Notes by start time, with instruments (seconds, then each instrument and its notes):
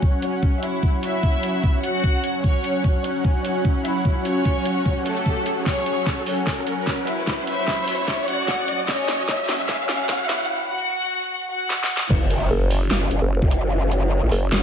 Already playing: supersaw synth F#3 C#4 C#5 F#5, violin section C#4, riser
0.02 kick
0.22 violin section C#4 C#5, closed hi-hat
0.43 kick
0.63 violin section E4 E5, closed hi-hat
0.83 kick
1.03 violin section E4 E5, closed hi-hat
1.23 kick
1.43 closed hi-hat
1.63 kick
1.84 violin section F#4 F#5, closed hi-hat
2.04 kick
2.24 closed hi-hat
2.44 violin section C#4 C#5, kick
2.64 closed hi-hat
2.84 kick
3.04 violin section C#4 C#5, closed hi-hat
3.24 kick
3.45 violin section C#4 C#5, closed hi-hat
3.65 kick
3.85 violin section E4 E5, closed hi-hat
4.05 kick
4.25 violin section C#4 C#5, closed hi-hat
4.45 kick
4.65 closed hi-hat
4.86 kick
5.06 violin section A3 A4, closed hi-hat
5.17 closed hi-hat
5.26 kick
5.46 closed hi-hat
5.66 violin section C#4 C#5, kick, snare
5.86 closed hi-hat
6.06 kick, snare
6.26 violin section C#4 C#5, open hi-hat
6.47 kick, snare
6.67 violin section C#4 C#5, closed hi-hat
6.87 kick, snare
7.07 violin section E4 E5, closed hi-hat
7.27 kick, snare
7.47 violin section E4 E5, closed hi-hat
7.67 kick, snare
7.88 open hi-hat
8.08 kick, snare
8.28 violin section F#4 F#5, closed hi-hat
8.48 kick, snare
8.68 closed hi-hat
8.88 violin section C#4 C#5, kick, snare
9.08 snare, closed hi-hat
9.28 kick, snare
9.49 violin section C#4 C#5, snare, open hi-hat
9.69 kick, snare
9.89 violin section C#4 C#5, snare, closed hi-hat
10.09 kick, snare
10.29 violin section E4 E5, snare, closed hi-hat
10.69 violin section F#4 F#5
11.50 violin section F#4 F#5
11.70 snare
11.83 snare
11.97 snare
12.10 wobble bass F#1, supersaw synth C#4 F#4 C#5, kick, crash, impact
12.30 closed hi-hat
12.51 wobble bass F#1
12.71 open hi-hat
12.91 wobble bass F#1, snare
13.11 wobble bass F#1, closed hi-hat
13.22 wobble bass F#1
13.42 wobble bass F#1, kick
13.51 closed hi-hat
13.92 closed hi-hat
14.23 wobble bass A1
14.32 wobble bass F#1, open hi-hat
14.52 wobble bass F#1, snare